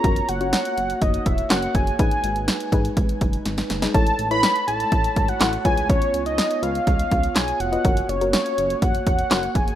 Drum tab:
HH |xxxxxxxxxxxxxxxx|xxxxxxxxxxxxxxxx|xxxxxxxxxxxxxxxx|xxxxxxxxxxxxxxxx|
CP |------------x---|----------------|------------x---|------------x---|
SD |----o-------o---|----o-------oooo|----o-------o---|----o-------o---|
BD |o-------o-o---o-|o-----o-o-o-----|o-------o-o---o-|o-------o-o-----|

HH |xxxxxxxxxxxxxxxx|
CP |------------x---|
SD |----o-------o---|
BD |o-------o-o---o-|